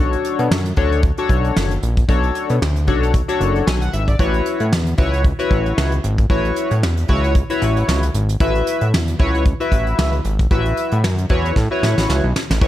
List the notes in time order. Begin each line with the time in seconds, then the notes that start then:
Already playing: B1 D4 F#4 A4 C#5
0.13 closed hi-hat
0.25 closed hi-hat
0.39 B2, closed hi-hat
0.51 F#2, snare
0.65 closed hi-hat
0.76 D2 D4 F#4 A4 C#5, kick, closed hi-hat
0.92 closed hi-hat
1.03 kick, closed hi-hat
1.18 D4 F#4 A4 C#5, closed hi-hat
1.29 B1, kick, closed hi-hat
1.44 closed hi-hat
1.56 F#1, snare
1.71 closed hi-hat
1.83 A#1, closed hi-hat
1.97 kick, closed hi-hat
2.08 B1 D4 F#4 A4 C#5, kick, closed hi-hat
2.23 closed hi-hat
2.35 closed hi-hat
2.49 B2, closed hi-hat
2.62 D2, snare
2.76 closed hi-hat
2.87 B1 D4 F#4 A4 C#5, kick, closed hi-hat
3.03 closed hi-hat
3.14 kick, closed hi-hat
3.28 D4 F#4 A4 C#5, closed hi-hat
3.41 F#1, closed hi-hat
3.55 closed hi-hat
3.67 B1 G#5, snare
3.81 F#5, closed hi-hat
3.93 G#1 E5, closed hi-hat
4.08 D5, kick, closed hi-hat
4.19 A1 E4 F#4 B4 C#5, kick, closed hi-hat
4.34 closed hi-hat
4.46 closed hi-hat
4.60 A2, closed hi-hat
4.72 E2, snare
4.86 closed hi-hat
4.98 C#2 E4 F#4 B4 C#5, kick, closed hi-hat
5.13 closed hi-hat
5.24 kick, closed hi-hat
5.39 E4 F#4 B4 C#5, closed hi-hat
5.51 A1, kick, closed hi-hat
5.66 closed hi-hat
5.77 C#2, snare
5.92 closed hi-hat
6.04 G#1, closed hi-hat
6.18 kick, closed hi-hat
6.30 A1 E4 F#4 B4 C#5, kick, closed hi-hat
6.45 closed hi-hat
6.56 closed hi-hat
6.71 A2, closed hi-hat
6.83 E2, snare
6.97 closed hi-hat
7.08 C#2 E4 F#4 B4 C#5, kick, closed hi-hat
7.24 closed hi-hat
7.35 kick, closed hi-hat
7.50 E4 F#4 B4 C#5, closed hi-hat
7.62 A1, closed hi-hat
7.76 closed hi-hat
7.88 C#2, snare
8.03 closed hi-hat
8.14 G#1, closed hi-hat
8.29 closed hi-hat
8.40 A1 E4 F#4 B4 E5, kick, closed hi-hat
8.55 closed hi-hat
8.67 closed hi-hat
8.81 A2, closed hi-hat
8.93 E2, snare
9.08 closed hi-hat
9.19 C#2 E4 F#4 B4 C#5, kick, closed hi-hat
9.35 closed hi-hat
9.45 kick, closed hi-hat
9.60 E4 F#4 B4 E5, closed hi-hat
9.72 A1, kick, closed hi-hat
9.87 closed hi-hat
9.99 C#2, snare
10.13 closed hi-hat
10.25 G#1, closed hi-hat
10.39 kick, closed hi-hat
10.51 A1 E4 F#4 B4 E5, kick, closed hi-hat
10.65 closed hi-hat
10.77 closed hi-hat
10.92 A2, closed hi-hat
11.04 F#2, snare
11.18 closed hi-hat
11.29 E2 E4 F#4 B4 C#5, kick, closed hi-hat
11.45 closed hi-hat
11.56 A2, kick, snare
11.71 E4 F#4 B4 C#5
11.83 A2, snare
11.97 A1, snare
12.09 C#2, snare
12.24 B1
12.36 snare
12.50 A1, snare
12.61 A1 E4 F#4 B4 C#5, kick, closed hi-hat